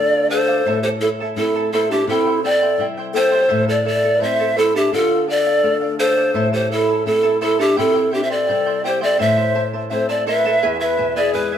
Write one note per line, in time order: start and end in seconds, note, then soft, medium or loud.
0.00 0.61 D3 medium
0.00 0.63 A3 soft
0.00 0.63 D4 soft
0.00 0.63 F4 soft
0.00 0.12 A4 soft
0.00 0.28 A4 medium
0.00 0.12 D5 medium
0.00 0.30 D5 medium
0.00 0.10 F5 medium
0.12 0.30 D5 soft
0.12 0.29 F5 soft
0.29 0.79 A4 medium
0.29 0.47 A4 medium
0.29 0.79 C5 medium
0.29 0.48 D5 medium
0.29 0.47 F5 medium
0.48 0.66 A4 soft
0.48 0.66 D5 medium
0.48 0.65 F5 medium
0.66 2.04 A2 medium
0.66 0.84 E4 medium
0.66 0.83 A4 medium
0.66 0.83 C5 medium
0.66 0.83 E5 medium
0.66 0.83 A5 medium
0.82 1.02 E4 soft
0.82 0.88 G4 medium
0.82 1.01 A4 soft
0.82 0.89 C5 medium
0.82 1.01 A5 soft
1.00 1.08 E4 medium
1.00 1.19 E4 medium
1.00 1.09 A4 medium
1.00 1.19 A4 medium
1.00 1.19 E5 medium
1.00 1.19 A5 medium
1.20 1.36 E4 soft
1.20 1.37 A4 soft
1.20 1.37 A5 soft
1.36 2.05 A3 soft
1.36 2.05 C4 soft
1.36 1.69 E4 medium
1.36 2.05 E4 soft
1.36 1.55 E4 soft
1.36 1.70 A4 medium
1.36 1.55 A4 medium
1.36 1.54 E5 medium
1.36 1.54 A5 medium
1.55 1.72 E4 soft
1.55 1.73 A4 soft
1.55 1.72 A5 soft
1.72 1.88 E4 medium
1.72 1.90 E4 medium
1.72 1.89 A4 medium
1.72 1.90 A4 medium
1.72 1.90 C5 medium
1.72 1.90 E5 medium
1.72 1.90 A5 medium
1.89 2.06 D4 medium
1.89 2.08 E4 soft
1.89 2.07 G4 medium
1.89 2.08 A4 medium
1.89 2.08 C5 soft
1.89 2.08 E5 medium
1.89 2.08 A5 medium
2.07 3.46 C3 medium
2.07 2.40 E4 medium
2.07 2.26 E4 medium
2.07 2.26 G4 medium
2.07 2.41 A4 medium
2.07 2.26 C5 medium
2.07 2.26 E5 medium
2.07 2.26 G5 medium
2.27 2.43 E4 soft
2.27 2.44 C5 soft
2.27 2.44 G5 soft
2.42 2.61 E4 medium
2.42 2.83 A4 medium
2.42 2.61 C5 medium
2.42 2.85 D5 medium
2.42 2.61 E5 medium
2.42 2.60 G5 medium
2.61 2.79 E4 soft
2.61 2.79 C5 soft
2.61 2.79 G5 medium
2.78 3.47 G3 soft
2.78 3.47 C4 soft
2.78 3.48 E4 soft
2.78 2.97 E4 medium
2.78 2.97 C5 medium
2.78 2.97 E5 medium
2.78 2.96 G5 medium
2.98 3.14 E4 soft
2.98 3.14 C5 soft
2.98 3.14 G5 medium
3.13 3.31 E4 medium
3.13 3.31 G4 medium
3.13 3.63 A4 medium
3.13 3.31 C5 medium
3.13 3.65 C5 loud
3.13 3.32 E5 medium
3.13 3.31 G5 medium
3.32 3.48 E4 medium
3.32 3.48 G4 medium
3.32 3.47 C5 medium
3.32 3.47 E5 medium
3.32 3.49 G5 medium
3.48 4.89 A2 medium
3.48 3.67 E4 medium
3.48 3.67 A4 medium
3.48 3.67 C5 medium
3.48 3.67 E5 medium
3.48 3.66 A5 medium
3.68 3.84 E4 soft
3.68 3.84 A4 medium
3.68 3.84 A4 soft
3.68 3.85 D5 medium
3.68 3.85 A5 soft
3.85 4.03 E4 medium
3.85 4.03 A4 medium
3.85 4.23 A4 medium
3.85 4.25 D5 medium
3.85 4.03 E5 medium
3.85 4.02 A5 medium
4.03 4.20 E4 soft
4.03 4.20 A4 soft
4.03 4.20 A5 soft
4.20 4.90 A3 soft
4.20 4.90 C4 soft
4.20 4.39 E4 medium
4.20 4.91 E4 soft
4.20 4.39 A4 medium
4.20 4.59 C5 medium
4.20 4.38 E5 medium
4.20 4.60 E5 loud
4.20 4.38 A5 medium
4.39 4.56 E4 soft
4.39 4.56 A4 soft
4.39 4.57 A5 medium
4.57 4.77 E4 medium
4.57 4.75 E4 medium
4.57 4.74 A4 medium
4.57 4.78 A4 medium
4.57 4.74 C5 medium
4.57 4.74 E5 medium
4.57 4.74 A5 medium
4.75 4.92 D4 medium
4.75 4.92 E4 soft
4.75 4.93 G4 medium
4.75 4.91 A4 medium
4.75 4.93 C5 soft
4.75 4.93 E5 medium
4.75 4.93 A5 medium
4.92 6.31 D3 medium
4.92 5.26 F4 medium
4.92 5.10 A4 medium
4.92 5.26 A4 medium
4.92 5.10 D5 medium
4.92 5.09 F5 medium
5.10 5.27 D5 soft
5.10 5.28 F5 soft
5.27 5.45 A4 soft
5.27 5.96 A4 medium
5.27 5.46 D5 medium
5.27 5.75 D5 loud
5.27 5.45 F5 medium
5.46 5.63 D5 soft
5.46 5.64 F5 soft
5.63 6.32 A3 soft
5.63 6.32 D4 soft
5.63 6.33 F4 soft
5.63 5.81 A4 medium
5.63 5.81 D5 medium
5.63 5.80 F5 medium
5.81 5.98 D5 soft
5.81 5.98 F5 medium
5.99 6.17 A4 medium
5.99 6.49 A4 medium
5.99 6.49 C5 medium
5.99 6.16 D5 medium
5.99 6.16 F5 medium
6.17 6.34 A4 soft
6.17 6.35 D5 medium
6.17 6.34 F5 medium
6.34 7.73 A2 medium
6.34 6.53 E4 medium
6.34 6.52 A4 medium
6.34 6.53 C5 medium
6.34 6.53 E5 medium
6.34 6.51 A5 medium
6.53 6.71 E4 soft
6.53 6.69 G4 medium
6.53 6.71 A4 soft
6.53 6.70 C5 medium
6.53 6.70 A5 soft
6.71 7.04 E4 medium
6.71 6.89 E4 medium
6.71 7.04 A4 medium
6.71 6.89 A4 medium
6.71 6.89 E5 soft
6.71 6.87 A5 medium
6.89 7.06 E4 soft
6.89 7.06 A4 soft
6.89 7.06 A5 soft
7.06 7.75 A3 soft
7.06 7.75 C4 soft
7.06 7.39 E4 medium
7.06 7.75 E4 soft
7.06 7.23 E4 soft
7.06 7.40 A4 medium
7.06 7.23 A4 medium
7.06 7.24 E5 medium
7.06 7.22 A5 medium
7.23 7.40 E4 soft
7.23 7.40 A4 soft
7.23 7.41 A5 medium
7.41 7.58 E4 medium
7.41 7.61 E4 medium
7.41 7.62 A4 medium
7.41 7.58 A4 medium
7.41 7.59 C5 medium
7.41 7.59 E5 medium
7.41 7.58 A5 medium
7.59 7.79 D4 medium
7.59 7.76 E4 medium
7.59 7.80 G4 medium
7.59 7.77 A4 medium
7.59 7.76 C5 medium
7.59 7.75 E5 medium
7.59 7.77 A5 medium
7.76 9.17 C3 medium
7.76 7.94 E4 medium
7.76 8.13 E4 medium
7.76 7.95 G4 medium
7.76 8.13 A4 medium
7.76 7.94 C5 medium
7.76 7.95 E5 medium
7.76 7.93 G5 medium
7.95 8.10 E4 soft
7.95 8.11 C5 soft
7.95 8.12 G5 soft
8.11 8.25 D4 medium
8.11 8.30 E4 medium
8.11 8.25 G4 medium
8.11 8.29 C5 medium
8.11 8.30 E5 medium
8.11 8.29 G5 medium
8.23 8.33 C5 medium
8.23 8.33 E5 medium
8.30 8.47 E4 soft
8.30 8.85 A4 medium
8.30 8.48 C5 soft
8.30 8.85 D5 medium
8.30 8.48 G5 soft
8.47 9.18 G3 soft
8.47 9.18 C4 soft
8.47 8.66 E4 medium
8.47 9.18 E4 soft
8.47 8.66 C5 medium
8.47 8.66 E5 medium
8.47 8.65 G5 medium
8.66 8.84 E4 soft
8.66 8.84 C5 soft
8.66 8.84 G5 soft
8.84 9.01 E4 medium
8.84 9.01 G4 medium
8.84 9.02 G4 medium
8.84 9.01 C5 medium
8.84 9.00 C5 medium
8.84 9.01 E5 medium
8.84 9.00 G5 medium
9.01 9.18 E4 medium
9.01 9.19 G4 soft
9.01 9.20 A4 medium
9.01 9.18 C5 medium
9.01 9.19 D5 medium
9.01 9.18 E5 soft
9.01 9.19 G5 medium
9.19 10.59 A2 medium
9.19 9.37 E4 medium
9.19 9.37 A4 medium
9.19 9.36 C5 medium
9.19 9.67 C5 medium
9.19 9.37 E5 medium
9.19 9.63 E5 medium
9.19 9.36 A5 medium
9.37 9.54 E4 soft
9.37 9.54 C5 soft
9.37 9.54 A5 soft
9.55 9.73 E4 medium
9.55 9.73 C5 medium
9.55 9.73 E5 medium
9.55 9.72 A5 medium
9.73 9.90 E4 soft
9.73 9.90 C5 soft
9.73 9.90 A5 soft
9.90 10.60 A3 soft
9.90 10.61 C4 soft
9.90 10.08 E4 medium
9.90 10.61 E4 soft
9.90 10.10 A4 medium
9.90 10.08 C5 medium
9.90 10.10 C5 medium
9.90 10.08 E5 soft
9.90 10.08 A5 medium
10.09 10.26 E4 soft
10.09 10.27 A4 medium
10.09 10.26 C5 medium
10.09 10.27 D5 medium
10.09 10.27 A5 medium
10.26 10.45 E4 medium
10.26 10.45 A4 medium
10.26 10.77 B4 medium
10.26 10.44 C5 medium
10.26 10.45 E5 medium
10.26 10.77 E5 medium
10.26 10.44 A5 medium
10.45 10.62 E4 medium
10.45 10.62 A4 medium
10.45 10.62 C5 medium
10.45 10.61 E5 medium
10.45 10.63 A5 medium
10.63 11.58 E2 medium
10.63 10.80 E4 medium
10.63 10.80 G#4 medium
10.63 10.79 B4 medium
10.63 10.81 E5 medium
10.63 10.78 G#5 medium
10.80 10.96 E4 soft
10.80 10.97 B4 soft
10.80 11.14 B4 medium
10.80 11.14 E5 medium
10.80 10.98 G#5 soft
10.97 11.33 B2 soft
10.97 11.16 E4 medium
10.97 11.15 B4 medium
10.97 11.16 E5 medium
10.97 11.15 G#5 medium
11.16 11.32 E4 medium
11.16 11.35 G#4 medium
11.16 11.36 G#4 medium
11.16 11.33 B4 medium
11.16 11.35 D5 medium
11.16 11.32 E5 medium
11.16 11.34 G#5 medium
11.33 11.58 G#3 soft
11.33 11.52 E4 medium
11.33 11.58 G#4 medium
11.33 11.58 B4 medium
11.33 11.51 B4 medium
11.33 11.51 E5 medium
11.33 11.51 G#5 medium
11.52 11.58 E4 soft
11.52 11.58 B4 soft
11.52 11.58 G#5 medium